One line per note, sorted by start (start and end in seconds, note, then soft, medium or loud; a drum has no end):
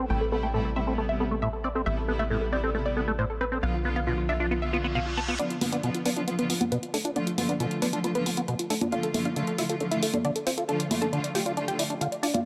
0.10 1.84 A1 medium
0.10 0.25 C3 medium
0.10 0.25 G3 medium
0.10 0.25 A3 medium
0.10 0.13 A3 medium
0.10 0.25 E4 medium
0.10 0.19 G5 medium
0.21 0.30 A4 medium
0.32 0.47 C3 medium
0.32 0.48 G3 medium
0.32 0.48 A3 medium
0.32 0.36 B3 medium
0.32 0.48 E4 medium
0.32 0.42 A4 medium
0.43 0.47 A3 medium
0.43 0.53 G5 medium
0.54 0.61 A2 loud
0.54 0.69 C3 medium
0.54 0.69 G3 medium
0.54 0.69 A3 medium
0.54 0.69 E4 medium
0.54 0.63 A4 medium
0.65 0.74 A4 medium
0.76 0.84 C3 medium
0.76 0.84 G3 medium
0.76 0.84 A3 medium
0.76 0.80 C4 medium
0.76 0.84 E4 medium
0.76 0.86 E5 medium
0.87 0.95 C3 medium
0.87 0.95 G3 medium
0.87 0.95 A3 medium
0.87 0.94 C4 medium
0.87 0.95 E4 medium
0.87 0.96 A4 medium
0.98 1.06 C3 medium
0.98 1.06 G3 medium
0.98 1.01 A3 medium
0.98 1.06 B3 medium
0.98 1.06 E4 medium
0.98 1.08 A4 medium
1.09 1.24 C3 medium
1.09 1.24 G3 medium
1.09 1.24 B3 medium
1.09 1.24 E4 medium
1.09 1.19 E5 medium
1.20 1.25 B3 medium
1.20 1.30 A4 medium
1.31 1.36 A3 medium
1.31 1.41 A4 medium
1.42 1.49 A2 loud
1.42 1.52 E5 medium
1.53 1.63 A4 medium
1.64 1.69 C4 medium
1.64 1.74 D5 medium
1.75 1.82 C4 medium
1.75 1.85 A4 medium
1.86 3.61 A1 medium
1.86 2.02 C3 medium
1.86 2.02 G3 medium
1.86 1.89 A3 medium
1.86 2.02 B3 medium
1.86 2.02 E4 medium
1.86 1.96 E5 loud
1.97 2.07 A4 medium
2.08 2.24 C3 medium
2.08 2.24 G3 medium
2.08 2.24 B3 medium
2.08 2.13 B3 medium
2.08 2.24 E4 medium
2.08 2.18 A4 medium
2.19 2.24 A3 medium
2.19 2.29 E5 medium
2.30 2.37 A2 loud
2.30 2.46 C3 medium
2.30 2.46 G3 medium
2.30 2.46 B3 medium
2.30 2.46 E4 medium
2.30 2.40 A4 medium
2.41 2.51 A4 medium
2.52 2.60 C3 medium
2.52 2.60 G3 medium
2.52 2.60 B3 medium
2.52 2.57 C4 medium
2.52 2.60 E4 medium
2.52 2.62 D5 medium
2.63 2.71 C3 medium
2.63 2.71 G3 medium
2.63 2.71 B3 medium
2.63 2.70 C4 medium
2.63 2.71 E4 medium
2.63 2.73 A4 medium
2.75 2.82 C3 medium
2.75 2.82 G3 medium
2.75 2.77 A3 medium
2.75 2.82 B3 medium
2.75 2.83 E4 medium
2.75 2.84 A4 medium
2.86 3.01 C3 medium
2.86 3.01 G3 medium
2.86 3.01 B3 medium
2.86 3.01 E4 medium
2.86 2.95 D5 medium
2.97 3.01 B3 medium
2.97 3.06 A4 medium
3.08 3.12 A3 medium
3.08 3.17 A4 medium
3.19 3.25 A2 loud
3.19 3.28 C5 medium
3.30 3.39 A4 medium
3.41 3.45 C4 medium
3.41 3.50 B4 medium
3.52 3.58 C4 medium
3.52 3.61 A4 medium
3.62 5.37 B1 medium
3.62 3.78 D3 medium
3.62 3.78 F3 medium
3.62 3.78 B3 medium
3.62 3.65 B3 medium
3.62 3.78 F4 medium
3.62 3.72 F5 medium
3.74 3.83 F4 medium
3.85 4.00 D3 medium
3.85 4.00 F3 medium
3.85 4.00 B3 medium
3.85 3.89 B3 medium
3.85 4.00 F4 medium
3.85 3.94 F4 medium
3.96 4.00 B3 medium
3.96 4.05 F5 medium
4.07 4.13 B2 loud
4.07 4.22 D3 medium
4.07 4.22 F3 medium
4.07 4.22 B3 medium
4.07 4.22 F4 medium
4.07 4.16 F4 medium
4.18 4.27 F4 medium
4.29 4.37 D3 medium
4.29 4.37 F3 medium
4.29 4.37 B3 medium
4.29 4.33 D4 medium
4.29 4.37 F4 medium
4.29 4.38 E5 medium
4.40 4.48 D3 medium
4.40 4.48 F3 medium
4.40 4.48 B3 medium
4.40 4.47 D4 medium
4.40 4.49 F4 medium
4.40 4.48 F4 medium
4.51 4.59 D3 medium
4.51 4.59 F3 medium
4.51 4.59 B3 medium
4.51 4.54 B3 medium
4.51 4.59 F4 medium
4.51 4.60 F4 medium
4.51 reverse cymbal medium
4.62 4.78 D3 medium
4.62 4.77 F3 medium
4.62 4.78 B3 medium
4.62 4.78 F4 medium
4.62 4.72 E5 medium
4.73 4.78 B3 loud
4.73 4.83 F4 medium
4.84 4.87 B3 loud
4.84 4.94 F4 medium
4.95 5.00 B2 medium
4.95 5.05 F5 medium
5.06 5.16 F4 medium
5.17 5.20 B3 medium
5.17 5.27 A5 medium
5.28 5.35 B3 medium
5.28 5.38 F4 medium
5.39 5.55 D3 medium
5.39 5.55 F3 medium
5.39 5.55 B3 medium
5.39 5.42 B3 medium
5.39 5.49 D4 medium
5.39 5.55 F4 medium
5.39 5.49 D5 loud
5.39 closed hi-hat medium
5.50 5.60 F4 medium
5.50 closed hi-hat medium
5.61 5.77 D3 medium
5.61 5.77 F3 medium
5.61 5.77 B3 medium
5.61 5.66 B3 medium
5.61 5.77 F4 medium
5.61 5.71 F4 medium
5.61 open hi-hat loud
5.61 high conga medium
5.72 5.77 B3 medium
5.72 5.82 D4 medium
5.72 5.82 D5 medium
5.72 closed hi-hat medium
5.83 5.90 B2 loud
5.83 5.99 D3 medium
5.83 5.99 F3 medium
5.83 5.99 B3 medium
5.83 5.99 F4 medium
5.83 5.93 F4 medium
5.83 closed hi-hat medium
5.94 6.04 F4 medium
5.94 closed hi-hat medium
6.05 6.13 D3 medium
6.05 6.13 F3 medium
6.05 6.13 B3 medium
6.05 6.15 B3 medium
6.05 6.10 D4 medium
6.05 6.13 F4 medium
6.05 6.15 B4 medium
6.05 open hi-hat medium
6.16 6.24 D3 medium
6.16 6.24 F3 medium
6.16 6.24 B3 medium
6.16 6.23 D4 medium
6.16 6.24 F4 medium
6.16 6.26 F4 medium
6.16 closed hi-hat medium
6.27 6.35 D3 medium
6.27 6.35 F3 medium
6.27 6.35 B3 medium
6.27 6.30 B3 medium
6.27 6.35 F4 medium
6.27 6.37 F4 medium
6.27 closed hi-hat medium
6.38 6.54 D3 medium
6.38 6.54 F3 medium
6.38 6.54 B3 medium
6.38 6.48 B3 medium
6.38 6.54 F4 medium
6.38 6.48 B4 medium
6.38 closed hi-hat medium
6.50 6.54 B3 medium
6.50 6.59 F4 medium
6.50 open hi-hat loud
6.61 6.65 B3 medium
6.61 6.70 F4 medium
6.61 closed hi-hat medium
6.61 high conga medium
6.72 6.78 B2 medium
6.72 6.81 B3 medium
6.72 6.81 B4 medium
6.72 closed hi-hat medium
6.83 6.92 F4 medium
6.83 closed hi-hat medium
6.94 7.03 A3 medium
6.94 6.98 D4 medium
6.94 7.03 A4 medium
6.94 open hi-hat medium
7.05 7.11 D4 medium
7.05 7.14 F4 medium
7.05 closed hi-hat medium
7.15 7.31 D3 medium
7.15 7.31 F3 medium
7.15 7.31 A3 medium
7.15 7.18 B3 medium
7.15 7.25 D4 medium
7.15 7.31 F4 medium
7.15 7.25 D5 medium
7.15 closed hi-hat medium
7.27 7.36 F4 medium
7.27 closed hi-hat medium
7.38 7.53 D3 medium
7.38 7.53 F3 medium
7.38 7.53 A3 medium
7.38 7.42 B3 medium
7.38 7.53 F4 medium
7.38 7.47 F4 medium
7.38 open hi-hat loud
7.38 high conga medium
7.49 7.53 B3 medium
7.49 7.58 D4 medium
7.49 7.58 D5 medium
7.49 closed hi-hat medium
7.59 7.66 B2 loud
7.59 7.75 D3 medium
7.59 7.75 F3 medium
7.59 7.75 A3 medium
7.59 7.75 F4 medium
7.59 7.69 F4 medium
7.59 closed hi-hat medium
7.71 7.80 F4 medium
7.71 closed hi-hat medium
7.82 7.90 D3 medium
7.82 7.89 F3 medium
7.82 7.90 A3 medium
7.82 7.91 B3 medium
7.82 7.86 D4 medium
7.82 7.89 F4 medium
7.82 7.91 B4 medium
7.82 open hi-hat medium
7.93 8.01 D3 medium
7.93 8.01 F3 medium
7.93 8.01 A3 medium
7.93 7.99 D4 medium
7.93 8.01 F4 medium
7.93 8.02 F4 medium
7.93 closed hi-hat medium
8.04 8.12 D3 medium
8.04 8.12 F3 medium
8.04 8.12 A3 medium
8.04 8.07 B3 medium
8.04 8.12 F4 medium
8.04 8.14 F4 medium
8.04 closed hi-hat medium
8.15 8.30 D3 medium
8.15 8.30 F3 medium
8.15 8.30 A3 medium
8.15 8.25 B3 medium
8.15 8.30 F4 medium
8.15 8.25 B4 loud
8.15 closed hi-hat medium
8.26 8.30 B3 medium
8.26 8.36 F4 medium
8.26 open hi-hat loud
8.37 8.41 B3 medium
8.37 8.47 F4 medium
8.37 closed hi-hat medium
8.48 8.55 B2 loud
8.48 8.58 B3 medium
8.48 8.58 B4 medium
8.48 closed hi-hat medium
8.59 8.69 F4 medium
8.59 closed hi-hat medium
8.70 8.80 A3 medium
8.70 8.75 D4 medium
8.70 8.80 A4 medium
8.70 open hi-hat medium
8.81 8.88 D4 medium
8.81 8.91 F4 medium
8.81 closed hi-hat medium
8.81 high conga medium
8.92 9.08 D3 medium
8.92 9.08 F3 medium
8.92 9.08 A3 medium
8.92 8.95 D4 medium
8.92 9.08 F4 medium
8.92 9.02 F4 medium
8.92 9.02 F5 loud
8.92 closed hi-hat medium
9.03 9.13 A4 medium
9.03 closed hi-hat medium
9.14 9.30 D3 medium
9.14 9.30 F3 medium
9.14 9.30 A3 medium
9.14 9.19 E4 medium
9.14 9.30 F4 medium
9.14 9.24 A4 medium
9.14 open hi-hat loud
9.14 high conga medium
9.25 9.30 D4 medium
9.25 9.35 F4 medium
9.25 9.35 F5 medium
9.25 closed hi-hat medium
9.36 9.43 D3 loud
9.36 9.52 D3 medium
9.36 9.52 F3 medium
9.36 9.52 A3 medium
9.36 9.52 F4 medium
9.36 9.46 A4 medium
9.36 closed hi-hat medium
9.47 9.57 A4 medium
9.47 closed hi-hat medium
9.58 9.66 D3 medium
9.58 9.66 F3 medium
9.58 9.66 A3 medium
9.58 9.68 E4 medium
9.58 9.63 F4 medium
9.58 9.66 F4 medium
9.58 9.68 E5 medium
9.58 open hi-hat loud
9.69 9.77 D3 medium
9.69 9.77 F3 medium
9.69 9.77 A3 medium
9.69 9.76 F4 medium
9.69 9.77 F4 medium
9.69 9.79 A4 medium
9.69 closed hi-hat medium
9.80 9.88 D3 medium
9.80 9.88 F3 medium
9.80 9.88 A3 medium
9.80 9.83 D4 medium
9.80 9.88 F4 medium
9.80 9.90 A4 medium
9.80 closed hi-hat medium
9.91 10.07 D3 medium
9.91 10.07 F3 medium
9.91 10.07 A3 medium
9.91 10.01 E4 medium
9.91 10.07 F4 medium
9.91 10.01 E5 medium
9.91 closed hi-hat medium
10.02 10.07 E4 medium
10.02 10.12 A4 medium
10.02 open hi-hat loud
10.13 10.18 D4 medium
10.13 10.23 A4 medium
10.13 closed hi-hat medium
10.13 high conga medium
10.24 10.31 D3 loud
10.24 10.34 D4 medium
10.24 10.34 D5 medium
10.24 closed hi-hat medium
10.36 10.45 A4 medium
10.36 closed hi-hat medium
10.46 10.56 C4 medium
10.46 10.51 F4 medium
10.46 10.56 C5 medium
10.46 open hi-hat loud
10.58 10.64 F4 medium
10.58 10.67 A4 medium
10.58 closed hi-hat medium
10.68 10.84 D3 medium
10.68 10.84 F3 medium
10.68 10.84 A3 medium
10.68 10.71 D4 medium
10.68 10.84 F4 medium
10.68 10.78 A4 medium
10.68 10.78 A5 medium
10.68 closed hi-hat medium
10.79 10.89 D5 medium
10.79 closed hi-hat medium
10.90 11.06 D3 medium
10.90 11.06 F3 medium
10.90 11.06 A3 medium
10.90 10.95 E4 medium
10.90 11.06 F4 medium
10.90 11.00 D5 medium
10.90 open hi-hat loud
10.90 high conga medium
11.02 11.06 D4 medium
11.02 11.11 A4 medium
11.02 11.11 A5 medium
11.02 closed hi-hat medium
11.13 11.19 D3 loud
11.13 11.28 D3 medium
11.13 11.28 F3 medium
11.13 11.28 A3 medium
11.13 11.28 F4 medium
11.13 11.22 D5 medium
11.13 closed hi-hat medium
11.24 11.33 D5 medium
11.24 closed hi-hat medium
11.35 11.43 D3 medium
11.35 11.43 F3 medium
11.35 11.43 A3 medium
11.35 11.39 F4 medium
11.35 11.43 F4 medium
11.35 11.44 G4 medium
11.35 11.44 G5 medium
11.35 open hi-hat medium
11.46 11.54 D3 medium
11.46 11.54 F3 medium
11.46 11.54 A3 medium
11.46 11.52 F4 medium
11.46 11.54 F4 medium
11.46 11.55 D5 medium
11.46 closed hi-hat medium
11.57 11.65 D3 medium
11.57 11.65 F3 medium
11.57 11.65 A3 medium
11.57 11.60 D4 medium
11.57 11.65 F4 medium
11.57 11.66 D5 medium
11.57 closed hi-hat medium
11.68 11.84 D3 medium
11.68 11.84 F3 medium
11.68 11.84 A3 medium
11.68 11.84 F4 medium
11.68 11.77 G4 medium
11.68 11.77 G5 loud
11.68 closed hi-hat medium
11.79 11.83 E4 medium
11.79 11.88 D5 medium
11.79 open hi-hat loud
11.90 11.94 D4 medium
11.90 11.99 D5 medium
11.90 closed hi-hat medium
12.01 12.08 D3 loud
12.01 12.10 F4 medium
12.01 12.10 F5 medium
12.01 closed hi-hat medium
12.12 12.22 D5 medium
12.12 closed hi-hat medium
12.23 12.32 D4 medium
12.23 12.27 F4 medium
12.23 12.32 D5 medium
12.23 open hi-hat medium
12.34 12.41 F4 medium
12.34 12.43 D5 medium
12.34 closed hi-hat medium
12.34 high conga medium